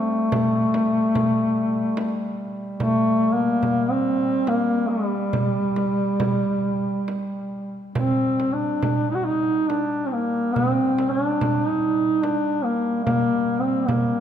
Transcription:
Already playing: duduk G3 A3
0.32 frame drum
0.74 frame drum
1.15 frame drum
1.97 frame drum
2.77 duduk A3, frame drum
3.33 duduk A#3
3.63 frame drum
3.91 duduk C4
4.47 duduk A#3, frame drum
4.89 duduk G3
5.33 frame drum
5.76 frame drum
6.20 frame drum
7.08 frame drum
7.95 duduk G3 C4, frame drum
8.40 frame drum
8.53 duduk D4
8.82 frame drum
9.11 duduk D#4
9.15 duduk F#4
9.25 duduk D#4
9.69 duduk D4, frame drum
10.06 duduk C4
10.12 duduk A#3
10.54 duduk C4, frame drum
10.99 frame drum
11.11 duduk D4
11.41 frame drum
11.68 duduk D#4
12.23 duduk D4, frame drum
12.64 duduk A#3
13.04 duduk A#3, frame drum
13.60 duduk C4
13.87 duduk A#3, frame drum

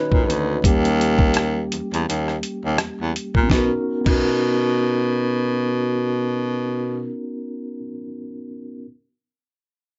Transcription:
Already playing: tine electric piano D#4 F#4 B4 C#5 D#5
0.12 baritone saxophone A#2, kick
0.30 baritone saxophone D2, closed hi-hat
0.64 baritone saxophone D#2, tine electric piano G3 A#3 C#4 G4, kick, closed hi-hat
0.85 closed hi-hat
1.01 closed hi-hat
1.19 kick
1.34 cross-stick, closed hi-hat
1.72 baritone saxophone E2, closed hi-hat
1.93 baritone saxophone E2, closed hi-hat
2.09 baritone saxophone D#2, closed hi-hat
2.28 cross-stick
2.43 closed hi-hat
2.65 baritone saxophone D#2
2.78 baritone saxophone E2, cross-stick, closed hi-hat
3.01 baritone saxophone E2
3.16 closed hi-hat
3.35 baritone saxophone A#2, kick
3.43 tine electric piano B3 C#4
3.50 baritone saxophone B2, tine electric piano D#4, kick, snare
3.54 tine electric piano F#4 A#4
4.01 tine electric piano B3 C#4
4.06 baritone saxophone B2, tine electric piano D#4, kick, crash
4.11 tine electric piano F#4 A#4

